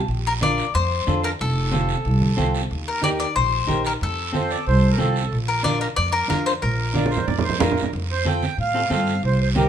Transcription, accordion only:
0, 0, Header, 1, 2, 480
1, 0, Start_track
1, 0, Key_signature, -2, "major"
1, 0, Tempo, 326797
1, 125, Time_signature, 4, 2, 24, 8
1, 14228, End_track
2, 0, Start_track
2, 0, Title_t, "Accordion"
2, 0, Program_c, 0, 21
2, 6381, Note_on_c, 0, 72, 86
2, 6616, Note_on_c, 0, 74, 98
2, 6623, Note_off_c, 0, 72, 0
2, 6837, Note_off_c, 0, 74, 0
2, 6872, Note_on_c, 0, 72, 100
2, 7197, Note_off_c, 0, 72, 0
2, 7215, Note_on_c, 0, 70, 70
2, 7324, Note_off_c, 0, 70, 0
2, 7338, Note_on_c, 0, 69, 70
2, 7892, Note_off_c, 0, 69, 0
2, 10192, Note_on_c, 0, 74, 98
2, 10429, Note_on_c, 0, 72, 81
2, 10448, Note_off_c, 0, 74, 0
2, 10661, Note_off_c, 0, 72, 0
2, 10672, Note_on_c, 0, 74, 89
2, 10919, Note_on_c, 0, 72, 82
2, 10927, Note_off_c, 0, 74, 0
2, 11146, Note_off_c, 0, 72, 0
2, 11173, Note_on_c, 0, 70, 64
2, 11617, Note_off_c, 0, 70, 0
2, 11914, Note_on_c, 0, 72, 84
2, 12147, Note_off_c, 0, 72, 0
2, 12161, Note_on_c, 0, 79, 86
2, 12591, Note_off_c, 0, 79, 0
2, 12643, Note_on_c, 0, 77, 96
2, 13086, Note_off_c, 0, 77, 0
2, 13108, Note_on_c, 0, 77, 88
2, 13542, Note_off_c, 0, 77, 0
2, 13601, Note_on_c, 0, 72, 82
2, 13804, Note_off_c, 0, 72, 0
2, 13826, Note_on_c, 0, 72, 77
2, 13929, Note_off_c, 0, 72, 0
2, 14067, Note_on_c, 0, 70, 89
2, 14228, Note_off_c, 0, 70, 0
2, 14228, End_track
0, 0, End_of_file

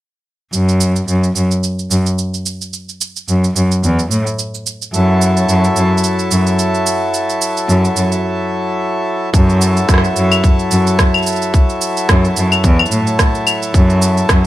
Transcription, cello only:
0, 0, Header, 1, 2, 480
1, 0, Start_track
1, 0, Key_signature, 3, "minor"
1, 0, Tempo, 550459
1, 463, Time_signature, 4, 2, 24, 8
1, 12614, End_track
2, 0, Start_track
2, 0, Title_t, "Cello"
2, 0, Program_c, 0, 42
2, 466, Note_on_c, 0, 42, 76
2, 910, Note_off_c, 0, 42, 0
2, 944, Note_on_c, 0, 42, 72
2, 1140, Note_off_c, 0, 42, 0
2, 1183, Note_on_c, 0, 42, 67
2, 1290, Note_off_c, 0, 42, 0
2, 1664, Note_on_c, 0, 42, 74
2, 1770, Note_off_c, 0, 42, 0
2, 2863, Note_on_c, 0, 42, 77
2, 3060, Note_off_c, 0, 42, 0
2, 3105, Note_on_c, 0, 42, 69
2, 3211, Note_off_c, 0, 42, 0
2, 3344, Note_on_c, 0, 40, 76
2, 3540, Note_off_c, 0, 40, 0
2, 3582, Note_on_c, 0, 45, 71
2, 3689, Note_off_c, 0, 45, 0
2, 4302, Note_on_c, 0, 42, 81
2, 4748, Note_off_c, 0, 42, 0
2, 4785, Note_on_c, 0, 42, 80
2, 4981, Note_off_c, 0, 42, 0
2, 5026, Note_on_c, 0, 42, 75
2, 5131, Note_off_c, 0, 42, 0
2, 5506, Note_on_c, 0, 42, 79
2, 5611, Note_off_c, 0, 42, 0
2, 6703, Note_on_c, 0, 42, 89
2, 6900, Note_off_c, 0, 42, 0
2, 6944, Note_on_c, 0, 42, 67
2, 7050, Note_off_c, 0, 42, 0
2, 8141, Note_on_c, 0, 42, 92
2, 8587, Note_off_c, 0, 42, 0
2, 8622, Note_on_c, 0, 42, 79
2, 8819, Note_off_c, 0, 42, 0
2, 8860, Note_on_c, 0, 42, 72
2, 8969, Note_off_c, 0, 42, 0
2, 9341, Note_on_c, 0, 42, 80
2, 9449, Note_off_c, 0, 42, 0
2, 10542, Note_on_c, 0, 42, 90
2, 10739, Note_off_c, 0, 42, 0
2, 10784, Note_on_c, 0, 42, 75
2, 10891, Note_off_c, 0, 42, 0
2, 11022, Note_on_c, 0, 40, 86
2, 11219, Note_off_c, 0, 40, 0
2, 11260, Note_on_c, 0, 45, 69
2, 11368, Note_off_c, 0, 45, 0
2, 11981, Note_on_c, 0, 42, 86
2, 12427, Note_off_c, 0, 42, 0
2, 12462, Note_on_c, 0, 42, 81
2, 12614, Note_off_c, 0, 42, 0
2, 12614, End_track
0, 0, End_of_file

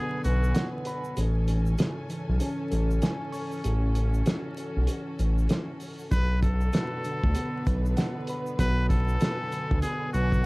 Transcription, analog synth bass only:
0, 0, Header, 1, 2, 480
1, 0, Start_track
1, 0, Tempo, 618557
1, 907, Time_signature, 4, 2, 24, 8
1, 8116, End_track
2, 0, Start_track
2, 0, Title_t, "Analog synth bass"
2, 0, Program_c, 0, 38
2, 194, Note_on_c, 0, 35, 93
2, 407, Note_off_c, 0, 35, 0
2, 914, Note_on_c, 0, 33, 117
2, 1359, Note_off_c, 0, 33, 0
2, 1779, Note_on_c, 0, 35, 92
2, 1860, Note_off_c, 0, 35, 0
2, 2112, Note_on_c, 0, 33, 94
2, 2326, Note_off_c, 0, 33, 0
2, 2830, Note_on_c, 0, 33, 106
2, 3278, Note_off_c, 0, 33, 0
2, 3700, Note_on_c, 0, 35, 89
2, 3781, Note_off_c, 0, 35, 0
2, 4031, Note_on_c, 0, 33, 93
2, 4246, Note_off_c, 0, 33, 0
2, 4749, Note_on_c, 0, 35, 115
2, 5197, Note_off_c, 0, 35, 0
2, 5618, Note_on_c, 0, 38, 91
2, 5700, Note_off_c, 0, 38, 0
2, 5953, Note_on_c, 0, 35, 101
2, 6167, Note_off_c, 0, 35, 0
2, 6669, Note_on_c, 0, 35, 112
2, 7117, Note_off_c, 0, 35, 0
2, 7538, Note_on_c, 0, 38, 90
2, 7620, Note_off_c, 0, 38, 0
2, 7872, Note_on_c, 0, 35, 91
2, 8086, Note_off_c, 0, 35, 0
2, 8116, End_track
0, 0, End_of_file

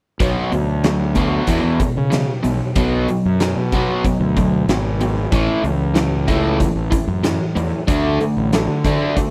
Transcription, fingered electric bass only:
0, 0, Header, 1, 2, 480
1, 0, Start_track
1, 0, Tempo, 639659
1, 158, Time_signature, 4, 2, 24, 8
1, 6982, End_track
2, 0, Start_track
2, 0, Title_t, "Fingered electric bass"
2, 0, Program_c, 0, 33
2, 151, Note_on_c, 0, 35, 86
2, 261, Note_off_c, 0, 35, 0
2, 391, Note_on_c, 0, 38, 83
2, 1039, Note_off_c, 0, 38, 0
2, 1110, Note_on_c, 0, 40, 87
2, 1221, Note_off_c, 0, 40, 0
2, 1227, Note_on_c, 0, 40, 76
2, 1339, Note_off_c, 0, 40, 0
2, 1480, Note_on_c, 0, 49, 85
2, 1694, Note_off_c, 0, 49, 0
2, 1835, Note_on_c, 0, 35, 90
2, 1944, Note_off_c, 0, 35, 0
2, 2073, Note_on_c, 0, 35, 91
2, 2290, Note_off_c, 0, 35, 0
2, 2442, Note_on_c, 0, 42, 79
2, 2655, Note_off_c, 0, 42, 0
2, 2674, Note_on_c, 0, 47, 68
2, 2891, Note_off_c, 0, 47, 0
2, 3149, Note_on_c, 0, 38, 74
2, 3475, Note_off_c, 0, 38, 0
2, 3511, Note_on_c, 0, 32, 88
2, 3943, Note_off_c, 0, 32, 0
2, 3995, Note_on_c, 0, 33, 87
2, 4104, Note_off_c, 0, 33, 0
2, 4230, Note_on_c, 0, 37, 84
2, 4985, Note_off_c, 0, 37, 0
2, 5069, Note_on_c, 0, 33, 78
2, 5180, Note_off_c, 0, 33, 0
2, 5309, Note_on_c, 0, 42, 95
2, 5528, Note_off_c, 0, 42, 0
2, 5674, Note_on_c, 0, 40, 90
2, 5783, Note_off_c, 0, 40, 0
2, 5917, Note_on_c, 0, 38, 92
2, 6133, Note_off_c, 0, 38, 0
2, 6277, Note_on_c, 0, 33, 79
2, 6493, Note_off_c, 0, 33, 0
2, 6512, Note_on_c, 0, 50, 69
2, 6730, Note_off_c, 0, 50, 0
2, 6982, End_track
0, 0, End_of_file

